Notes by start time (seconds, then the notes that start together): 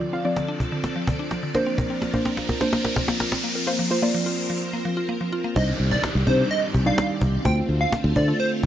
Already playing: F3 C4 A4 D5, riser
0.01 D3
0.13 C4 F4 F5, cajon slap
0.25 F3 C4 F4 D5
0.37 D3, cajon slap
0.48 D4
0.60 cajon bass
0.72 D3
0.84 cajon slap
0.96 F3
1.07 D3, cajon bass, cajon slap
1.19 D4
1.31 F3, cajon slap
1.43 D3
1.55 A#3 C4 D4 A#4 C5, cajon slap
1.66 C4
1.78 A#4, cajon bass, cajon slap
1.90 C4
2.02 A#3, cajon slap
2.13 A#3 D4 A#4 C5, cajon bass
2.25 C4, cajon slap
2.37 A#3, cajon slap
2.49 A#4, cajon bass, cajon slap
2.61 A#3 D4 C5, cajon slap
2.73 A#3, cajon slap
2.85 A#4, cajon slap
2.96 C4, cajon bass, cajon slap
3.08 A#3, cajon slap
3.20 A#4, cajon slap
3.32 C4, cajon slap
3.44 A#3
3.55 A#4
3.67 A#3 F4 A#4 C5
3.79 F3
3.90 A#3 F4 C5
4.02 A#3 F4 D5
4.14 F3
4.26 F4
4.50 F3
4.73 A#3
4.85 F3
4.97 F4
5.09 A#3
5.21 F3
5.32 F4
5.44 A#3
5.56 C2 D#3 G3 C4 D4 D#4 G4 C5 D5 D#5, cajon bass, downlifter
5.80 C2, cajon slap
5.91 D5, cajon bass
6.04 cajon slap
6.15 C2
6.27 C3 G3 D4 D#4 C5, cajon bass
6.51 D#5, cajon slap
6.74 C2, cajon bass
6.86 G3 D4 D#4 D5 F5
6.98 cajon slap
7.21 C2, cajon bass
7.45 D2 D3 A3 D4 F4 C5 G5, cajon bass
7.69 D2, cajon slap
7.81 F5
7.92 cajon slap
8.04 D2
8.16 D3 A3 D4 F4 C5 D5, cajon bass
8.28 A3 D4 F4 A4
8.40 C5, cajon slap